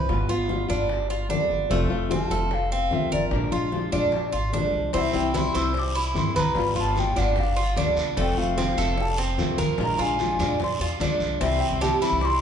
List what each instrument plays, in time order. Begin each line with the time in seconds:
Already playing: cuban tres B4
0.08 upright bass G1, nylon-string guitar G3 B3 F4, high bongo, high conga
0.28 upright bass G1, nylon-string guitar B3 F4, cuban tres F4, high bongo, high conga
0.49 nylon-string guitar G3 B3 F4, high bongo, high conga
0.69 upright bass G1, nylon-string guitar B3 F4, cuban tres D4, high bongo, high conga, low conga
0.89 muted nylon-string guitar stroke, high bongo, high conga
1.09 cuban tres F4, high bongo, high conga
1.28 upright bass D2, nylon-string guitar G3 B3 F4, cuban tres D4, high bongo, low bongo, high conga
1.50 upright bass G1, high conga
1.70 upright bass F1, nylon-string guitar C3 F3 A3 C4 F4, cuban tres A3, high bongo, high conga
1.90 upright bass F1, nylon-string guitar F3 A3 C4 F4, high bongo, high conga
2.10 nylon-string guitar F3 A3 C4 F4, cuban tres C4, flute A5, high bongo, high conga
2.30 upright bass F1, nylon-string guitar F3 A3 C4 F4, cuban tres A4, high bongo, high conga
2.51 flute F5, muted nylon-string guitar stroke, high bongo, high conga
2.71 cuban tres C4, flute F5, high bongo, high conga
2.91 upright bass C2, nylon-string guitar F3 A3 C4 F4, flute E5, high bongo, low bongo, high conga
3.12 upright bass G1, cuban tres A#4, flute D5, high conga
3.31 upright bass A#1, nylon-string guitar F3 G#3 D4 F4, high bongo, high conga
3.51 upright bass A#1, nylon-string guitar G#3 D4 F4, cuban tres F4, high bongo, high conga
3.72 nylon-string guitar F3 G#3 D4 F4, high bongo, high conga
3.92 upright bass A#1, nylon-string guitar G#3 D4 F4, cuban tres D4, high bongo, high conga, low conga
4.12 muted nylon-string guitar stroke, high bongo, high conga
4.32 upright bass G#1, cuban tres F4, high bongo, high conga
4.53 upright bass A#1, nylon-string guitar F3 G#3 D4 F4, cuban tres D4, high bongo, low bongo, high conga
4.74 upright bass C2, high conga
4.93 upright bass C2, nylon-string guitar C3 E3 G3 C4 E4, cuban tres C4, flute F#5, high bongo, high conga, long guiro
5.01 flute E5
5.13 upright bass C2, nylon-string guitar E3 G3 C4 E4, flute G5, high bongo, high conga
5.34 nylon-string guitar E3 G3 C4 E4, cuban tres E4, flute C6, high bongo, high conga, short guiro
5.54 upright bass C2, nylon-string guitar E3 G3 C4 E4, cuban tres C5, flute E6, high bongo, high conga, short guiro
5.74 muted nylon-string guitar stroke, high bongo, long guiro
5.79 flute D6
5.95 cuban tres E4, flute B5, high bongo, high conga
6.14 upright bass G2, nylon-string guitar E3 G3 C4 E4, flute C6, high bongo, low bongo, high conga, short guiro
6.35 upright bass C2, cuban tres B4, flute A#5, high conga, short guiro
6.55 upright bass G1, nylon-string guitar G3 B3 F4, high bongo, high conga, long guiro
6.60 flute B5
6.75 upright bass G1, nylon-string guitar B3 F4, cuban tres F4, flute A5, high bongo, high conga
6.96 nylon-string guitar G3 B3 F4, flute G5, high bongo, high conga, short guiro
7.16 upright bass G1, nylon-string guitar B3 F4, cuban tres D4, flute F#5, high bongo, high conga, low conga, short guiro
7.36 flute F5, muted nylon-string guitar stroke, high bongo, high conga, low conga, long guiro
7.56 cuban tres F4, high bongo, high conga
7.76 upright bass D2, nylon-string guitar G3 B3 F4, cuban tres D4, high bongo, low bongo, high conga, short guiro
7.97 upright bass C2, high conga, short guiro
8.17 upright bass F1, nylon-string guitar C3 F3 A3 C4 F4, cuban tres A3, flute G5, high bongo, high conga, long guiro
8.37 upright bass F1, nylon-string guitar F3 A3 C4 F4, flute F5, high bongo, high conga
8.57 nylon-string guitar F3 A3 C4 F4, cuban tres C4, high bongo, high conga, short guiro
8.77 upright bass F1, nylon-string guitar F3 A3 C4 F4, cuban tres A4, high bongo, short guiro
8.97 muted nylon-string guitar stroke, high bongo, high conga, long guiro
9.02 flute A5
9.18 cuban tres C4, high bongo, high conga
9.38 upright bass C2, nylon-string guitar F3 A3 C4 F4, high bongo, low bongo, high conga, short guiro
9.58 upright bass G1, cuban tres A#4, high conga, short guiro
9.78 upright bass A#1, nylon-string guitar F3 G#3 D4 F4, high bongo, high conga, long guiro
9.83 flute A#5
9.98 upright bass A#1, nylon-string guitar G#3 D4 F4, cuban tres F4, flute G#5, high bongo, high conga
10.19 nylon-string guitar F3 G#3 D4 F4, high bongo, high conga, short guiro
10.39 upright bass A#1, nylon-string guitar G#3 D4 F4, cuban tres D4, high bongo, high conga, low conga, short guiro
10.60 flute C6, muted nylon-string guitar stroke, high bongo, high conga, low conga, long guiro
10.80 upright bass E2, cuban tres F4, high bongo, high conga
11.00 upright bass D2, nylon-string guitar F3 G#3 D4 F4, cuban tres D4, high bongo, low bongo, high conga, short guiro
11.20 upright bass C2, high conga, short guiro
11.41 upright bass C2, nylon-string guitar C3 E3 G3 C4 E4, cuban tres C4, flute E5, high bongo, high conga, long guiro
11.60 flute G5, high conga
11.71 upright bass C2
11.81 nylon-string guitar E3 G3 C4 E4, cuban tres G4, flute A5, high bongo, high conga, short guiro
12.01 nylon-string guitar E3 G3 C4 E4, cuban tres E4, flute B5, high bongo, high conga, short guiro
12.11 upright bass C2
12.21 flute C6 D6, muted nylon-string guitar stroke, high bongo, high conga, long guiro